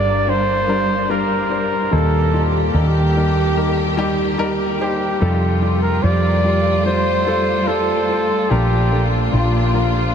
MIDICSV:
0, 0, Header, 1, 5, 480
1, 0, Start_track
1, 0, Tempo, 821918
1, 1125, Time_signature, 4, 2, 24, 8
1, 5926, End_track
2, 0, Start_track
2, 0, Title_t, "Flugelhorn"
2, 0, Program_c, 0, 56
2, 0, Note_on_c, 0, 74, 90
2, 173, Note_on_c, 0, 72, 97
2, 181, Note_off_c, 0, 74, 0
2, 646, Note_on_c, 0, 70, 80
2, 655, Note_off_c, 0, 72, 0
2, 1124, Note_on_c, 0, 69, 89
2, 1133, Note_off_c, 0, 70, 0
2, 1447, Note_off_c, 0, 69, 0
2, 1600, Note_on_c, 0, 67, 75
2, 2540, Note_off_c, 0, 67, 0
2, 2813, Note_on_c, 0, 67, 83
2, 3386, Note_off_c, 0, 67, 0
2, 3402, Note_on_c, 0, 70, 86
2, 3522, Note_on_c, 0, 74, 95
2, 3531, Note_off_c, 0, 70, 0
2, 4001, Note_off_c, 0, 74, 0
2, 4005, Note_on_c, 0, 72, 98
2, 4481, Note_on_c, 0, 69, 88
2, 4490, Note_off_c, 0, 72, 0
2, 4966, Note_on_c, 0, 67, 89
2, 4974, Note_off_c, 0, 69, 0
2, 5288, Note_off_c, 0, 67, 0
2, 5451, Note_on_c, 0, 65, 70
2, 5926, Note_off_c, 0, 65, 0
2, 5926, End_track
3, 0, Start_track
3, 0, Title_t, "Grand piano"
3, 0, Program_c, 1, 0
3, 0, Control_c, 1, 64, 127
3, 0, Note_on_c, 1, 43, 54
3, 0, Note_on_c, 1, 50, 52
3, 0, Note_on_c, 1, 55, 58
3, 0, Note_on_c, 1, 62, 52
3, 0, Note_on_c, 1, 67, 61
3, 0, Note_on_c, 1, 69, 66
3, 0, Note_on_c, 1, 70, 69
3, 150, Note_off_c, 1, 55, 0
3, 155, Note_off_c, 1, 62, 0
3, 157, Note_off_c, 1, 70, 0
3, 159, Note_on_c, 1, 55, 63
3, 164, Note_on_c, 1, 62, 58
3, 168, Note_off_c, 1, 67, 0
3, 168, Note_on_c, 1, 67, 68
3, 389, Note_off_c, 1, 55, 0
3, 393, Note_off_c, 1, 62, 0
3, 395, Note_off_c, 1, 67, 0
3, 397, Note_on_c, 1, 55, 75
3, 403, Note_on_c, 1, 62, 72
3, 405, Note_on_c, 1, 70, 88
3, 629, Note_off_c, 1, 55, 0
3, 632, Note_off_c, 1, 62, 0
3, 633, Note_off_c, 1, 70, 0
3, 639, Note_on_c, 1, 55, 80
3, 644, Note_on_c, 1, 62, 73
3, 648, Note_on_c, 1, 70, 91
3, 866, Note_off_c, 1, 55, 0
3, 872, Note_off_c, 1, 62, 0
3, 875, Note_off_c, 1, 70, 0
3, 875, Note_on_c, 1, 55, 61
3, 881, Note_on_c, 1, 62, 56
3, 884, Note_on_c, 1, 72, 68
3, 1107, Note_off_c, 1, 55, 0
3, 1111, Note_off_c, 1, 62, 0
3, 1113, Note_off_c, 1, 72, 0
3, 1116, Note_on_c, 1, 55, 80
3, 1119, Note_on_c, 1, 46, 55
3, 1119, Note_on_c, 1, 63, 75
3, 1123, Note_on_c, 1, 58, 89
3, 1134, Note_off_c, 1, 43, 0
3, 1134, Control_c, 1, 64, 0
3, 1137, Note_off_c, 1, 69, 0
3, 1139, Note_off_c, 1, 50, 0
3, 1245, Control_c, 1, 64, 127
3, 1348, Note_off_c, 1, 55, 0
3, 1350, Note_off_c, 1, 63, 0
3, 1352, Note_off_c, 1, 58, 0
3, 1359, Note_on_c, 1, 55, 60
3, 1361, Note_on_c, 1, 63, 57
3, 1365, Note_on_c, 1, 65, 65
3, 1590, Note_off_c, 1, 55, 0
3, 1591, Note_off_c, 1, 63, 0
3, 1593, Note_off_c, 1, 65, 0
3, 1599, Note_on_c, 1, 55, 64
3, 1601, Note_on_c, 1, 63, 59
3, 1603, Note_on_c, 1, 70, 72
3, 1819, Note_off_c, 1, 46, 0
3, 1830, Note_off_c, 1, 55, 0
3, 1831, Note_off_c, 1, 63, 0
3, 1832, Note_off_c, 1, 70, 0
3, 1844, Note_on_c, 1, 55, 58
3, 1847, Note_on_c, 1, 63, 59
3, 1851, Note_on_c, 1, 70, 67
3, 2072, Note_off_c, 1, 55, 0
3, 2074, Note_off_c, 1, 63, 0
3, 2076, Note_off_c, 1, 70, 0
3, 2080, Note_on_c, 1, 55, 65
3, 2084, Note_on_c, 1, 63, 56
3, 2088, Note_on_c, 1, 70, 71
3, 2311, Note_off_c, 1, 55, 0
3, 2313, Note_off_c, 1, 63, 0
3, 2314, Note_off_c, 1, 70, 0
3, 2320, Note_on_c, 1, 55, 96
3, 2322, Note_on_c, 1, 63, 86
3, 2327, Note_on_c, 1, 67, 113
3, 2551, Note_off_c, 1, 55, 0
3, 2551, Note_off_c, 1, 63, 0
3, 2554, Note_off_c, 1, 67, 0
3, 2560, Note_on_c, 1, 55, 98
3, 2562, Note_on_c, 1, 63, 90
3, 2565, Note_on_c, 1, 70, 113
3, 2791, Note_off_c, 1, 55, 0
3, 2792, Note_off_c, 1, 63, 0
3, 2793, Note_off_c, 1, 70, 0
3, 2801, Note_on_c, 1, 55, 64
3, 2804, Note_on_c, 1, 63, 64
3, 2809, Note_on_c, 1, 72, 73
3, 3030, Note_off_c, 1, 55, 0
3, 3032, Note_off_c, 1, 63, 0
3, 3035, Note_off_c, 1, 72, 0
3, 3039, Note_on_c, 1, 55, 88
3, 3043, Note_on_c, 1, 48, 60
3, 3044, Note_on_c, 1, 65, 79
3, 3046, Note_on_c, 1, 69, 91
3, 3054, Control_c, 1, 64, 0
3, 3145, Control_c, 1, 64, 127
3, 3270, Note_off_c, 1, 55, 0
3, 3273, Note_off_c, 1, 65, 0
3, 3273, Note_off_c, 1, 69, 0
3, 3282, Note_on_c, 1, 55, 64
3, 3284, Note_on_c, 1, 65, 57
3, 3288, Note_on_c, 1, 67, 69
3, 3512, Note_off_c, 1, 55, 0
3, 3513, Note_off_c, 1, 65, 0
3, 3515, Note_off_c, 1, 67, 0
3, 3523, Note_on_c, 1, 55, 70
3, 3525, Note_on_c, 1, 65, 61
3, 3528, Note_on_c, 1, 72, 70
3, 3741, Note_off_c, 1, 48, 0
3, 3752, Note_off_c, 1, 55, 0
3, 3753, Note_off_c, 1, 65, 0
3, 3755, Note_off_c, 1, 72, 0
3, 3763, Note_on_c, 1, 55, 67
3, 3764, Note_on_c, 1, 65, 57
3, 3770, Note_on_c, 1, 67, 69
3, 3992, Note_off_c, 1, 55, 0
3, 3993, Note_off_c, 1, 65, 0
3, 3996, Note_off_c, 1, 67, 0
3, 4003, Note_on_c, 1, 55, 65
3, 4010, Note_on_c, 1, 65, 60
3, 4013, Note_on_c, 1, 72, 74
3, 4232, Note_off_c, 1, 55, 0
3, 4236, Note_off_c, 1, 65, 0
3, 4237, Note_off_c, 1, 72, 0
3, 4242, Note_on_c, 1, 55, 82
3, 4247, Note_on_c, 1, 65, 73
3, 4250, Note_on_c, 1, 69, 90
3, 4472, Note_off_c, 1, 55, 0
3, 4474, Note_off_c, 1, 65, 0
3, 4475, Note_off_c, 1, 69, 0
3, 4483, Note_on_c, 1, 55, 82
3, 4488, Note_on_c, 1, 65, 74
3, 4490, Note_on_c, 1, 72, 91
3, 4712, Note_off_c, 1, 55, 0
3, 4714, Note_off_c, 1, 65, 0
3, 4716, Note_off_c, 1, 72, 0
3, 4723, Note_on_c, 1, 55, 64
3, 4727, Note_on_c, 1, 65, 57
3, 4732, Note_on_c, 1, 72, 69
3, 4952, Note_off_c, 1, 55, 0
3, 4954, Note_off_c, 1, 65, 0
3, 4957, Note_off_c, 1, 72, 0
3, 4966, Note_on_c, 1, 53, 81
3, 4967, Note_on_c, 1, 46, 56
3, 4969, Note_on_c, 1, 62, 80
3, 4972, Note_on_c, 1, 70, 92
3, 4973, Control_c, 1, 64, 0
3, 5088, Control_c, 1, 64, 127
3, 5194, Note_off_c, 1, 53, 0
3, 5195, Note_off_c, 1, 62, 0
3, 5197, Note_off_c, 1, 70, 0
3, 5205, Note_on_c, 1, 53, 59
3, 5208, Note_on_c, 1, 62, 54
3, 5211, Note_on_c, 1, 69, 66
3, 5433, Note_off_c, 1, 53, 0
3, 5435, Note_off_c, 1, 62, 0
3, 5436, Note_off_c, 1, 69, 0
3, 5445, Note_on_c, 1, 53, 64
3, 5448, Note_on_c, 1, 62, 58
3, 5452, Note_on_c, 1, 65, 68
3, 5663, Note_off_c, 1, 46, 0
3, 5673, Note_off_c, 1, 53, 0
3, 5675, Note_off_c, 1, 62, 0
3, 5677, Note_off_c, 1, 65, 0
3, 5685, Note_on_c, 1, 53, 59
3, 5688, Note_on_c, 1, 62, 56
3, 5693, Note_on_c, 1, 70, 70
3, 5913, Note_off_c, 1, 53, 0
3, 5915, Note_off_c, 1, 62, 0
3, 5917, Note_off_c, 1, 70, 0
3, 5926, End_track
4, 0, Start_track
4, 0, Title_t, "String section"
4, 0, Program_c, 2, 48
4, 0, Note_on_c, 2, 55, 68
4, 0, Note_on_c, 2, 58, 78
4, 0, Note_on_c, 2, 62, 62
4, 1105, Note_off_c, 2, 55, 0
4, 1105, Note_off_c, 2, 58, 0
4, 1106, Note_off_c, 2, 62, 0
4, 1123, Note_on_c, 2, 51, 70
4, 1125, Note_on_c, 2, 58, 63
4, 1126, Note_on_c, 2, 67, 80
4, 3025, Note_off_c, 2, 51, 0
4, 3026, Note_off_c, 2, 58, 0
4, 3027, Note_off_c, 2, 67, 0
4, 3045, Note_on_c, 2, 65, 80
4, 3046, Note_on_c, 2, 57, 64
4, 3049, Note_on_c, 2, 55, 73
4, 4946, Note_off_c, 2, 57, 0
4, 4946, Note_off_c, 2, 65, 0
4, 4948, Note_off_c, 2, 55, 0
4, 4969, Note_on_c, 2, 65, 82
4, 4970, Note_on_c, 2, 62, 66
4, 4973, Note_on_c, 2, 58, 71
4, 5926, Note_off_c, 2, 58, 0
4, 5926, Note_off_c, 2, 62, 0
4, 5926, Note_off_c, 2, 65, 0
4, 5926, End_track
5, 0, Start_track
5, 0, Title_t, "Fretless electric bass"
5, 0, Program_c, 3, 35
5, 0, Note_on_c, 3, 31, 87
5, 1103, Note_off_c, 3, 31, 0
5, 1124, Note_on_c, 3, 39, 85
5, 1581, Note_off_c, 3, 39, 0
5, 1601, Note_on_c, 3, 39, 90
5, 3020, Note_off_c, 3, 39, 0
5, 3046, Note_on_c, 3, 41, 86
5, 3502, Note_off_c, 3, 41, 0
5, 3525, Note_on_c, 3, 41, 88
5, 4942, Note_off_c, 3, 41, 0
5, 4969, Note_on_c, 3, 34, 94
5, 5424, Note_off_c, 3, 34, 0
5, 5449, Note_on_c, 3, 34, 87
5, 5926, Note_off_c, 3, 34, 0
5, 5926, End_track
0, 0, End_of_file